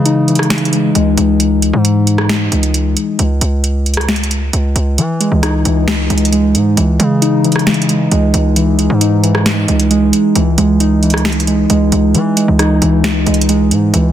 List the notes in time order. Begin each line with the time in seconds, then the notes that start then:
Already playing: C#3 E3 G#3
0.06 D#4, closed hi-hat
0.28 E3, closed hi-hat
0.35 cross-stick, closed hi-hat
0.43 closed hi-hat
0.50 E3, snare, closed hi-hat
0.58 closed hi-hat
0.65 closed hi-hat
0.73 G#3, closed hi-hat
0.95 C#2 G#3, closed hi-hat
1.17 C#2, closed hi-hat
1.40 closed hi-hat
1.62 closed hi-hat
1.73 G#2
1.85 closed hi-hat
2.07 closed hi-hat
2.18 cross-stick
2.29 snare, closed hi-hat
2.52 C#2, closed hi-hat
2.63 closed hi-hat
2.74 closed hi-hat
2.97 closed hi-hat
3.19 C#2, closed hi-hat
3.41 C#2, closed hi-hat
3.64 closed hi-hat
3.86 closed hi-hat
3.94 cross-stick, closed hi-hat
4.01 closed hi-hat
4.09 snare, closed hi-hat
4.16 closed hi-hat
4.24 closed hi-hat
4.31 closed hi-hat
4.53 C#2, closed hi-hat
4.76 C#2, closed hi-hat
4.98 E3, closed hi-hat
5.20 G#3, closed hi-hat
5.32 C#2
5.43 D#4, cross-stick, closed hi-hat
5.65 C#2 E3, closed hi-hat
5.88 E3, snare, closed hi-hat
6.10 C#2 G#3, closed hi-hat
6.18 closed hi-hat
6.25 closed hi-hat
6.33 G#3, closed hi-hat
6.55 G#2, closed hi-hat
6.77 C#2 E3, closed hi-hat
7.00 C#3 G#3, closed hi-hat
7.22 D#4, closed hi-hat
7.44 E3, closed hi-hat
7.52 cross-stick, closed hi-hat
7.59 closed hi-hat
7.67 E3, snare, closed hi-hat
7.74 closed hi-hat
7.82 closed hi-hat
7.89 G#3, closed hi-hat
8.11 C#2 G#3, closed hi-hat
8.34 C#2, closed hi-hat
8.56 E3, closed hi-hat
8.79 G#3, closed hi-hat
8.90 G#2
9.01 D#4, closed hi-hat
9.24 E3, closed hi-hat
9.35 cross-stick
9.46 E3, snare, closed hi-hat
9.68 C#2 G#3, closed hi-hat
9.80 closed hi-hat
9.91 G#3, closed hi-hat
10.13 closed hi-hat
10.36 C#2 E3, closed hi-hat
10.58 C#2 G#3, closed hi-hat
10.80 D#4, closed hi-hat
11.03 E3, closed hi-hat
11.10 cross-stick, closed hi-hat
11.18 closed hi-hat
11.25 E3, snare, closed hi-hat
11.32 closed hi-hat
11.40 closed hi-hat
11.47 G#3, closed hi-hat
11.70 C#2 G#3, closed hi-hat
11.92 C#2, closed hi-hat
12.15 E3, closed hi-hat
12.37 G#3, closed hi-hat
12.48 C#2
12.59 D#4, cross-stick, closed hi-hat
12.82 C#2 E3, closed hi-hat
13.04 E3, snare, closed hi-hat
13.26 C#2 G#3, closed hi-hat
13.34 closed hi-hat
13.41 closed hi-hat
13.49 G#3, closed hi-hat
13.71 G#2, closed hi-hat
13.94 C#2 E3, closed hi-hat